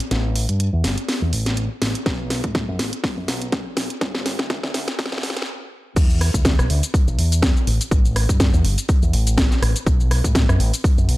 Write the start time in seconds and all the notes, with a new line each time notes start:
0.00 closed hi-hat
0.11 A1, snare, closed hi-hat
0.36 open hi-hat
0.49 G2, closed hi-hat
0.60 closed hi-hat
0.73 E2
0.84 G1, snare, open hi-hat
0.98 closed hi-hat
1.09 snare, open hi-hat
1.22 E2
1.33 A1, open hi-hat
1.46 snare, closed hi-hat
1.57 closed hi-hat
1.82 A1, snare, open hi-hat
1.95 closed hi-hat
2.06 B1, kick, snare, closed hi-hat
2.30 snare, open hi-hat
2.44 A2, kick, closed hi-hat
2.55 kick, snare, closed hi-hat
2.68 F#2
2.79 A1, snare, open hi-hat
2.93 closed hi-hat
3.04 muted fingered electric bass stroke, kick, snare, open hi-hat
3.17 F#2
3.28 B1, snare, open hi-hat
3.42 closed hi-hat
3.52 kick, snare, closed hi-hat
3.77 B1, snare, open hi-hat
3.90 closed hi-hat
4.01 G1, kick, snare, closed hi-hat
4.15 snare
4.26 snare, open hi-hat
4.39 D2, kick, snare, closed hi-hat
4.50 kick, snare, closed hi-hat
4.63 D2, snare
4.74 D2, snare, open hi-hat
4.88 snare, closed hi-hat
4.99 kick, snare, open hi-hat
5.06 snare
5.12 D2, snare
5.18 snare
5.23 G1, snare, open hi-hat
5.30 snare
5.37 snare, closed hi-hat
5.42 snare
5.96 E2, kick, closed hi-hat, crash, shaker
6.10 shaker
6.21 cross-stick, open hi-hat
6.34 D2, kick, closed hi-hat, shaker
6.45 kick, snare, closed hi-hat, shaker
6.59 B1, cross-stick, shaker
6.70 D2, open hi-hat
6.83 closed hi-hat, shaker
6.94 muted fingered electric bass stroke, kick, open hi-hat, shaker
7.07 B1, shaker
7.18 E2, open hi-hat
7.32 closed hi-hat, shaker
7.42 kick, snare, closed hi-hat, shaker
7.57 shaker
7.67 A1, open hi-hat
7.81 closed hi-hat, shaker
7.91 A1, kick, closed hi-hat, shaker
8.05 shaker
8.16 cross-stick, open hi-hat
8.29 G2, kick, closed hi-hat, shaker
8.40 kick, snare, closed hi-hat, shaker
8.54 E2, shaker
8.64 G1, open hi-hat
8.78 closed hi-hat, shaker
8.89 kick, open hi-hat, shaker
9.03 E2, shaker
9.13 A1, open hi-hat
9.27 closed hi-hat, shaker
9.38 kick, snare, closed hi-hat, shaker
9.51 snare, shaker
9.62 A1, cross-stick, open hi-hat
9.76 closed hi-hat, shaker
9.86 B1, kick, closed hi-hat, shaker
10.00 shaker
10.11 cross-stick, open hi-hat
10.24 A2, kick, closed hi-hat, shaker
10.35 kick, snare, closed hi-hat, shaker
10.49 F#2, cross-stick, shaker
10.60 A1, open hi-hat
10.74 closed hi-hat, shaker
10.84 muted fingered electric bass stroke, kick, open hi-hat, shaker
10.98 F#2, shaker
11.08 B1, open hi-hat